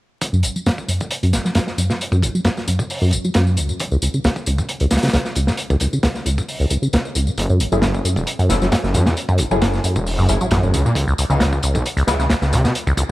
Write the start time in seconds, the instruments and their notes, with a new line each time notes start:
0.21 kick, closed hi-hat, tambourine
0.33 acid bass F#2, tambourine
0.43 acid bass F#1, closed hi-hat, tambourine
0.56 acid bass F#3, tambourine
0.66 acid bass F#2, snare, closed hi-hat, tambourine
0.78 kick, tambourine
0.88 acid bass F#2, closed hi-hat, tambourine
1.00 acid bass E3, kick, tambourine
1.11 closed hi-hat, tambourine
1.23 acid bass F#2, closed hi-hat, tambourine
1.33 acid bass F#1, snare, closed hi-hat, tambourine
1.45 acid bass F#3, snare, tambourine
1.55 acid bass F#2, snare, closed hi-hat, tambourine
1.67 snare, tambourine
1.78 acid bass F#2, closed hi-hat, tambourine
1.89 acid bass E3, snare, tambourine
2.01 closed hi-hat, tambourine
2.12 acid bass F#2, kick, tambourine
2.22 acid bass F#1, kick, closed hi-hat, tambourine
2.35 acid bass F#3, tambourine
2.45 acid bass F#2, snare, closed hi-hat, tambourine
2.57 snare, tambourine
2.68 acid bass F#2, closed hi-hat, tambourine
2.79 acid bass E3, kick, tambourine
2.90 open hi-hat, tambourine
3.02 acid bass F#2, tambourine
3.11 acid bass F#1, closed hi-hat, tambourine
3.24 acid bass F#3, tambourine
3.34 acid bass F#2, snare, closed hi-hat, tambourine
3.47 tambourine
3.57 acid bass C#2, closed hi-hat, tambourine
3.69 acid bass B2, tambourine
3.80 kick, closed hi-hat, tambourine
3.91 acid bass C#2, tambourine
4.02 acid bass C#2, closed hi-hat, tambourine
4.14 acid bass C#3, tambourine
4.24 acid bass C#2, snare, closed hi-hat, tambourine
4.36 kick, tambourine
4.46 acid bass C#2, closed hi-hat, tambourine
4.58 acid bass B2, kick, tambourine
4.69 closed hi-hat, tambourine
4.80 acid bass C#2, closed hi-hat, tambourine
4.91 acid bass C#2, snare, closed hi-hat, tambourine
4.97 snare, closed hi-hat
5.03 acid bass C#3, snare, closed hi-hat, tambourine
5.08 snare, closed hi-hat
5.13 acid bass C#2, snare, closed hi-hat, tambourine
5.25 snare, tambourine
5.35 acid bass C#2, closed hi-hat, tambourine
5.47 acid bass B2, snare, tambourine
5.57 closed hi-hat, tambourine
5.70 acid bass C#2, kick, tambourine
5.80 acid bass C#2, kick, closed hi-hat, tambourine
5.93 acid bass C#3, tambourine
6.03 acid bass C#2, snare, closed hi-hat, tambourine
6.14 snare, tambourine
6.26 acid bass C#2, closed hi-hat, tambourine
6.38 acid bass B2, kick, tambourine
6.48 open hi-hat, tambourine
6.60 acid bass C#2, tambourine
6.70 acid bass C#2, closed hi-hat, tambourine
6.82 acid bass C#3, tambourine
6.93 acid bass C#2, snare, closed hi-hat, tambourine
7.05 tambourine
7.15 acid bass C#2, closed hi-hat, tambourine
7.27 acid bass B2, tambourine
7.38 detuned saw bass F#1, kick, closed hi-hat, tambourine
7.49 acid bass F#2, tambourine
7.60 acid bass F#1, closed hi-hat, tambourine
7.72 detuned saw bass F#1, acid bass F#3, synth stab A3 C#4 E4 G#4, tambourine
7.82 acid bass F#2, snare, closed hi-hat, tambourine
7.94 kick, tambourine
8.05 acid bass F#2, closed hi-hat, tambourine
8.16 detuned saw bass E1, acid bass E3, kick, tambourine
8.27 closed hi-hat, tambourine
8.39 acid bass F#2, closed hi-hat, tambourine
8.49 acid bass F#1, detuned saw bass F#1, synth stab A3 C#4 E4 A4, snare, closed hi-hat, tambourine
8.62 detuned saw bass F#1, acid bass F#3, snare, tambourine
8.72 acid bass F#2, snare, closed hi-hat, tambourine
8.84 detuned saw bass F#1, snare, tambourine
8.94 detuned saw bass F#2, acid bass F#2, closed hi-hat, tambourine
9.06 detuned saw bass E2, acid bass E3, snare, tambourine
9.17 closed hi-hat, tambourine
9.29 acid bass F#2, kick, tambourine
9.38 acid bass F#1, kick, closed hi-hat, tambourine
9.51 detuned saw bass F#1, acid bass F#3, synth stab A3 C#4 E4 G#4, tambourine
9.62 acid bass F#2, snare, closed hi-hat, tambourine
9.74 snare, tambourine
9.84 acid bass F#2, closed hi-hat, tambourine
9.96 detuned saw bass E1, acid bass E3, kick, tambourine
10.07 open hi-hat, tambourine
10.18 detuned saw bass F#1, acid bass F#2, tambourine
10.29 acid bass F#1, detuned saw bass F#1, synth stab A3 C#4 E4 G#4, closed hi-hat, tambourine
10.41 detuned saw bass A1, acid bass F#3, tambourine
10.51 detuned saw bass A1, acid bass F#2, snare, closed hi-hat, tambourine
10.63 detuned saw bass E1, tambourine
10.73 detuned saw bass C#2, acid bass C#2, closed hi-hat, tambourine
10.85 detuned saw bass A#2, acid bass B2, tambourine
10.95 detuned saw bass C#2, kick, closed hi-hat, tambourine
11.07 acid bass C#2, tambourine
11.18 acid bass C#2, closed hi-hat, tambourine
11.30 detuned saw bass C#2, acid bass C#3, synth stab E3 G#3 B3 D#4, tambourine
11.40 acid bass C#2, snare, closed hi-hat, tambourine
11.53 kick, tambourine
11.63 acid bass C#2, closed hi-hat, tambourine
11.74 detuned saw bass B1, acid bass B2, kick, tambourine
11.86 closed hi-hat, tambourine
11.97 acid bass C#2, closed hi-hat, tambourine
12.07 detuned saw bass C#2, acid bass C#2, synth stab E3 G#3 B3 E4, snare, closed hi-hat, tambourine
12.19 detuned saw bass C#2, acid bass C#3, snare, tambourine
12.30 acid bass C#2, snare, closed hi-hat, tambourine
12.42 detuned saw bass C#2, snare, tambourine
12.52 acid bass C#2, detuned saw bass C#3, closed hi-hat, tambourine
12.64 detuned saw bass B2, acid bass B2, snare, tambourine
12.75 closed hi-hat, tambourine
12.87 acid bass C#2, kick, tambourine
12.97 acid bass C#2, kick, closed hi-hat, tambourine